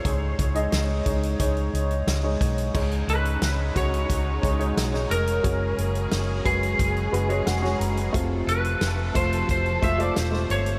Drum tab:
CC |----------------|x---------------|----------------|----------------|
HH |x-xxx-xxxxxxx-xx|-xxxx-xxx-xxx-xx|x-xxx-xxxxxxx-xx|x-xxx-xxxxxxx-xx|
SD |----o-------o---|----o-------oo--|----o-------oo--|----o-------oo--|
BD |o-o---o-o-----o-|o-----o-o-o-----|o-----o-o-------|o-----o-o-o-----|